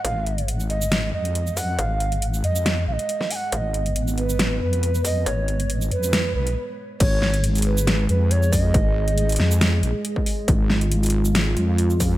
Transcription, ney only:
0, 0, Header, 1, 2, 480
1, 0, Start_track
1, 0, Tempo, 434783
1, 52, Time_signature, 4, 2, 24, 8
1, 13441, End_track
2, 0, Start_track
2, 0, Title_t, "Ney"
2, 0, Program_c, 0, 77
2, 52, Note_on_c, 0, 77, 96
2, 499, Note_off_c, 0, 77, 0
2, 772, Note_on_c, 0, 75, 96
2, 1219, Note_off_c, 0, 75, 0
2, 1255, Note_on_c, 0, 75, 98
2, 1736, Note_on_c, 0, 78, 111
2, 1753, Note_off_c, 0, 75, 0
2, 1978, Note_on_c, 0, 77, 98
2, 1995, Note_off_c, 0, 78, 0
2, 2455, Note_off_c, 0, 77, 0
2, 2695, Note_on_c, 0, 75, 90
2, 3140, Note_off_c, 0, 75, 0
2, 3178, Note_on_c, 0, 77, 100
2, 3232, Note_on_c, 0, 75, 109
2, 3243, Note_off_c, 0, 77, 0
2, 3658, Note_on_c, 0, 80, 92
2, 3675, Note_off_c, 0, 75, 0
2, 3706, Note_on_c, 0, 78, 100
2, 3717, Note_off_c, 0, 80, 0
2, 3895, Note_on_c, 0, 77, 85
2, 3912, Note_off_c, 0, 78, 0
2, 3941, Note_on_c, 0, 75, 92
2, 3952, Note_off_c, 0, 77, 0
2, 4374, Note_off_c, 0, 75, 0
2, 4616, Note_on_c, 0, 71, 91
2, 5061, Note_off_c, 0, 71, 0
2, 5094, Note_on_c, 0, 71, 104
2, 5539, Note_off_c, 0, 71, 0
2, 5573, Note_on_c, 0, 75, 104
2, 5809, Note_on_c, 0, 73, 94
2, 5826, Note_off_c, 0, 75, 0
2, 6291, Note_off_c, 0, 73, 0
2, 6534, Note_on_c, 0, 71, 96
2, 6979, Note_off_c, 0, 71, 0
2, 7016, Note_on_c, 0, 71, 105
2, 7238, Note_off_c, 0, 71, 0
2, 7731, Note_on_c, 0, 73, 119
2, 8178, Note_off_c, 0, 73, 0
2, 8452, Note_on_c, 0, 71, 98
2, 8898, Note_off_c, 0, 71, 0
2, 8934, Note_on_c, 0, 71, 94
2, 9178, Note_on_c, 0, 73, 100
2, 9195, Note_off_c, 0, 71, 0
2, 9416, Note_on_c, 0, 75, 118
2, 9432, Note_off_c, 0, 73, 0
2, 10854, Note_off_c, 0, 75, 0
2, 13441, End_track
0, 0, End_of_file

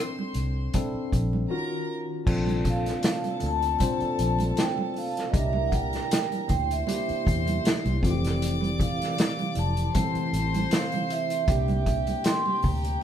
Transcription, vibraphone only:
0, 0, Header, 1, 2, 480
1, 0, Start_track
1, 0, Tempo, 767263
1, 1422, Time_signature, 4, 2, 24, 8
1, 8152, End_track
2, 0, Start_track
2, 0, Title_t, "Vibraphone"
2, 0, Program_c, 0, 11
2, 1688, Note_on_c, 0, 77, 95
2, 2167, Note_on_c, 0, 81, 94
2, 2168, Note_off_c, 0, 77, 0
2, 2876, Note_on_c, 0, 79, 85
2, 2895, Note_off_c, 0, 81, 0
2, 3092, Note_off_c, 0, 79, 0
2, 3117, Note_on_c, 0, 77, 83
2, 3313, Note_on_c, 0, 75, 56
2, 3314, Note_off_c, 0, 77, 0
2, 3347, Note_off_c, 0, 75, 0
2, 3359, Note_on_c, 0, 76, 87
2, 3550, Note_on_c, 0, 78, 76
2, 3555, Note_off_c, 0, 76, 0
2, 3585, Note_off_c, 0, 78, 0
2, 3590, Note_on_c, 0, 79, 88
2, 3808, Note_off_c, 0, 79, 0
2, 3828, Note_on_c, 0, 79, 83
2, 4060, Note_off_c, 0, 79, 0
2, 4067, Note_on_c, 0, 79, 85
2, 4197, Note_off_c, 0, 79, 0
2, 4204, Note_on_c, 0, 76, 74
2, 4891, Note_off_c, 0, 76, 0
2, 5520, Note_on_c, 0, 77, 88
2, 5965, Note_off_c, 0, 77, 0
2, 6000, Note_on_c, 0, 81, 87
2, 6686, Note_off_c, 0, 81, 0
2, 6716, Note_on_c, 0, 77, 83
2, 6955, Note_on_c, 0, 76, 86
2, 6956, Note_off_c, 0, 77, 0
2, 7645, Note_off_c, 0, 76, 0
2, 7665, Note_on_c, 0, 84, 99
2, 7888, Note_off_c, 0, 84, 0
2, 7912, Note_on_c, 0, 82, 86
2, 8152, Note_off_c, 0, 82, 0
2, 8152, End_track
0, 0, End_of_file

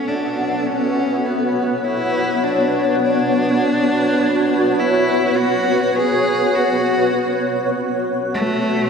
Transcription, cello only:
0, 0, Header, 1, 2, 480
1, 0, Start_track
1, 0, Tempo, 1176471
1, 1243, Time_signature, 4, 2, 24, 8
1, 3630, End_track
2, 0, Start_track
2, 0, Title_t, "Cello"
2, 0, Program_c, 0, 42
2, 31, Note_on_c, 0, 62, 78
2, 273, Note_on_c, 0, 61, 93
2, 279, Note_off_c, 0, 62, 0
2, 513, Note_on_c, 0, 59, 78
2, 519, Note_off_c, 0, 61, 0
2, 750, Note_on_c, 0, 64, 89
2, 756, Note_off_c, 0, 59, 0
2, 990, Note_on_c, 0, 62, 78
2, 996, Note_off_c, 0, 64, 0
2, 1231, Note_off_c, 0, 62, 0
2, 1233, Note_on_c, 0, 62, 109
2, 1953, Note_on_c, 0, 64, 95
2, 1959, Note_off_c, 0, 62, 0
2, 2193, Note_on_c, 0, 66, 103
2, 2199, Note_off_c, 0, 64, 0
2, 2431, Note_on_c, 0, 68, 101
2, 2437, Note_off_c, 0, 66, 0
2, 2675, Note_on_c, 0, 66, 90
2, 2681, Note_off_c, 0, 68, 0
2, 3039, Note_off_c, 0, 66, 0
2, 3405, Note_on_c, 0, 57, 108
2, 3630, Note_off_c, 0, 57, 0
2, 3630, End_track
0, 0, End_of_file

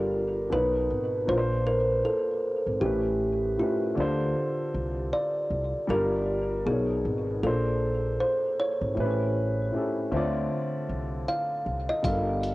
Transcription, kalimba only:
0, 0, Header, 1, 2, 480
1, 0, Start_track
1, 0, Tempo, 769231
1, 1753, Time_signature, 4, 2, 24, 8
1, 7829, End_track
2, 0, Start_track
2, 0, Title_t, "Kalimba"
2, 0, Program_c, 0, 108
2, 0, Note_on_c, 0, 70, 95
2, 327, Note_on_c, 0, 71, 105
2, 337, Note_off_c, 0, 70, 0
2, 803, Note_on_c, 0, 72, 99
2, 814, Note_off_c, 0, 71, 0
2, 1040, Note_on_c, 0, 70, 93
2, 1046, Note_off_c, 0, 72, 0
2, 1260, Note_off_c, 0, 70, 0
2, 1279, Note_on_c, 0, 69, 82
2, 1755, Note_on_c, 0, 67, 94
2, 1771, Note_off_c, 0, 69, 0
2, 2209, Note_off_c, 0, 67, 0
2, 2243, Note_on_c, 0, 65, 72
2, 2934, Note_off_c, 0, 65, 0
2, 3201, Note_on_c, 0, 74, 95
2, 3652, Note_off_c, 0, 74, 0
2, 3682, Note_on_c, 0, 70, 101
2, 4159, Note_on_c, 0, 68, 89
2, 4172, Note_off_c, 0, 70, 0
2, 4638, Note_on_c, 0, 69, 91
2, 4651, Note_off_c, 0, 68, 0
2, 5118, Note_on_c, 0, 72, 85
2, 5130, Note_off_c, 0, 69, 0
2, 5363, Note_off_c, 0, 72, 0
2, 5364, Note_on_c, 0, 73, 89
2, 6294, Note_off_c, 0, 73, 0
2, 7040, Note_on_c, 0, 77, 100
2, 7397, Note_off_c, 0, 77, 0
2, 7420, Note_on_c, 0, 75, 100
2, 7516, Note_on_c, 0, 77, 107
2, 7517, Note_off_c, 0, 75, 0
2, 7829, Note_off_c, 0, 77, 0
2, 7829, End_track
0, 0, End_of_file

